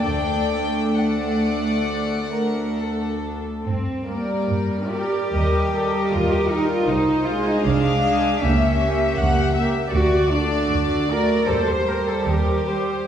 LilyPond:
<<
  \new Staff \with { instrumentName = "Violin section" } { \time 4/4 \key g \minor \tempo 4 = 75 g''4 fis''2~ fis''8 r8 | r8 d''4 d''8 ees''8 ees''4 ees''8 | r8 ees''4 ees''8 e''8 e''4 e''8 | r8 d''4 d''8 c''8 c''4 c''8 | }
  \new Staff \with { instrumentName = "Violin section" } { \time 4/4 \key g \minor <a' d''>4 d''4. bes'8 a'4 | r2 bes'8 a'8 bes'4 | c''4 f''4 e''4 fis''8 e''8 | d''2 c''4 bes'8 c''8 | }
  \new Staff \with { instrumentName = "Cello section" } { \time 4/4 \key g \minor d,2.~ d,8. r16 | c'8 bes4 g'4. f'16 g'16 ees'16 f'16 | ees'8 f'16 ees'16 d'4 cis'4. r8 | fis'8 d'4 bes'8 a'16 c''16 bes'16 a'16 g'4 | }
  \new Staff \with { instrumentName = "Viola section" } { \time 4/4 \key g \minor <a d'>2.~ <a d'>8. r16 | r8 <g bes'>4 <g bes'>8 <g bes'>8 <g bes'>4 <g bes'>8 | r8 <aes aes'>4 <aes aes'>8 <ais g'>8 <ais g'>4 <ais g'>8 | r8 <a fis'>4 <a fis'>8 <g g'>8 <g g'>4 <g g'>8 | }
  \new Staff \with { instrumentName = "Double bass section" } { \clef bass \time 4/4 \key g \minor d,4 r2. | g,4 g,4 ees,4 ees,4 | c,4 c,4 cis,4 cis,4 | d,4 d,4 ees,4 ees,4 | }
>>